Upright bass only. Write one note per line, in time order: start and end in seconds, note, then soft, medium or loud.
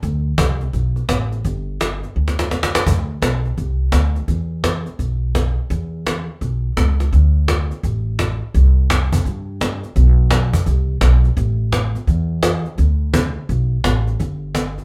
0.03 0.31 D2 medium
0.38 0.68 C2 medium
0.73 1.03 B1 medium
1.09 1.39 A1 medium
1.45 2.01 G1 medium
2.16 2.72 D2 medium
2.86 3.15 D2 medium
3.22 3.52 B1 medium
3.58 3.88 C2 medium
3.92 4.23 D2 medium
4.28 4.85 E2 medium
4.99 5.56 B1 medium
5.70 6.27 E2 medium
6.41 6.71 B1 medium
6.77 7.07 C#2 medium
7.13 7.69 D2 medium
7.83 8.40 A1 medium
8.55 9.11 C2 medium
9.25 9.82 G2 medium
9.96 10.52 B1 loud
10.66 10.96 C2 medium
11.01 11.31 B1 medium
11.37 11.93 A1 medium
12.07 12.64 E2 medium
12.78 13.35 D2 medium
13.49 13.79 B1 medium
13.84 14.14 A1 medium
14.20 14.76 G1 medium